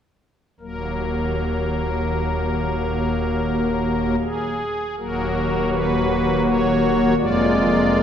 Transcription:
0.60 D#1 D#2 F#3 A#3 A#4
4.21 G#4
4.97 D#1 D#2 F#3 A#3 F#4 A#4
5.71 B4
6.45 C#5
7.18 F1 F2 G#3 A#3 F4 D5

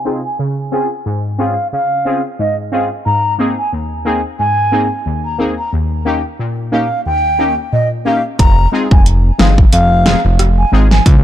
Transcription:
Already playing: C3
0.05 C4 D#4 F4 G#4
0.25 G#5
0.39 C#3
0.72 C4 C#4 F4 G#4 G#5
1.06 G#2
1.38 C4 C#4 F4 G#4 F5
1.73 C#3 F5
2.05 C4 C#4 F4 G#4
2.39 G#2 D#5
2.72 C4 C#4 F4 G#4 F5
3.06 G#2 A#5
3.38 A#3 C4 D#4 G#4
3.58 G#5
3.73 D#2
4.05 A#3 C4 D#4 G#4 G#5
4.39 G#2 G#5
4.72 A#3 C4 D#4 G#4
5.06 D#2
5.25 A#5
5.38 A#3 C4 D#4 G#4
5.58 A#5
5.73 D#2
6.05 A#3 C#4 D#4 G4 G5
6.39 A#2
6.72 A#3 C#4 D#4 G4 F5
7.06 D#2 G5
7.38 A#3 C#4 D#4 G4
7.73 A#2 D#5
8.05 A#3 C#4 D#4 G4 F5
8.39 F1 A#5, kick, closed hi-hat
8.72 G#3 C4 D#4 F4 G#4
8.91 F1 G#5, kick
9.06 closed hi-hat
9.39 G1 G#3 C4 D#4 F4 G#4 F5, cross-stick, snare
9.58 kick
9.72 F1 F5, closed hi-hat
10.05 G#3 C4 D#4 F4 G#4, cross-stick, snare
10.25 F1
10.39 cross-stick, closed hi-hat
10.58 G#5
10.72 G#1 G#3 C4 D#4 F4 G#4
10.91 G#5, snare
11.06 C#2, kick, closed hi-hat

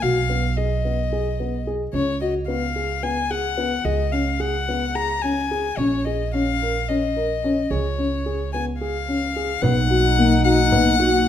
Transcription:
0.02 B1 F#4 F5
0.30 B3
0.57 G#4 D#5
0.85 B3
1.12 G#4
1.40 B3
1.67 G#4
1.93 C#2 C#4 C#5
2.21 F#4 D#5
2.48 B3 F5
2.76 G#4
3.03 B3 G#5
3.31 G#4 F#5
3.57 B3
3.85 C#2 G#4 D#5
4.12 C#4 F5
4.40 G#4 F#5
4.69 B3
4.95 G#4 A#5
5.22 C#4 G#5
5.51 G#4
5.77 A#1 C#4 C#5
6.05 G#4 D#5
6.34 C#4 F5
6.62 A#4
6.89 C#4 D#5
7.16 A#4
7.44 C#4
7.70 C#2 G#4 C#5
7.98 C#4
8.26 G#4
8.53 B3 G#5
8.80 G#4 F5
9.08 C#4
9.36 G#4
9.61 B1 B2 A#3 B3 D#4 F#5, frame drum
9.90 F#4
10.18 A#3
10.44 F#4 F#5
10.72 B3, frame drum
11.00 F#4

